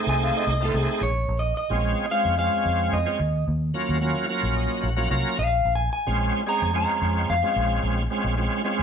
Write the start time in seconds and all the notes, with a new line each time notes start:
Already playing: A3 C4 D#4 G#4
0.07 C2 G#5
0.23 F5
0.37 D#5
0.47 C2 D#5
0.60 A3 C4 D#4 F4
0.65 A4
0.73 C2 A3 C4 D#4 G#4
0.79 G#4
1.01 A#1 C#5
1.28 A#1
1.39 D#5
1.57 D#5
1.70 A#1 G#3 C4 C#4 F4
2.10 G#3 C4 C#4 F4 F5
2.25 F2
2.37 G#3 C4 C#4 F4 F5
2.65 F2
2.93 F2 D#5
3.06 G#3 C4 C#4 F4
3.20 D#2
3.48 D#2
3.74 F#3 A#3 C#4 F4
3.89 D#2
4.01 F#3 A#3 C#4 F4
4.29 F#3 A#3 C#4 F4
4.43 A#1
4.56 D#5
4.83 A#1 F#5
4.97 F#3 A#3 C#4 F4
5.10 C2 F#3 A#3 C#4 F4 A#5
5.39 A#1 F5
5.65 A#1
5.75 G#5
5.93 G#5
6.07 A#1 G#3 C4 C#4 F4
6.47 G#3 C4 C#4 G#4 A#5
6.62 F2
6.74 G#3 C4 C#4 F4 A#5
7.02 F2
7.30 F2 F5
7.43 G#3 C4 C#4 F4
7.56 A#1
7.83 A#1
8.10 G#3 C4 C#4 F4
8.24 A#1
8.37 G#3 C4 C#4 F4
8.64 G#3 C4 C#4 F4
8.79 F2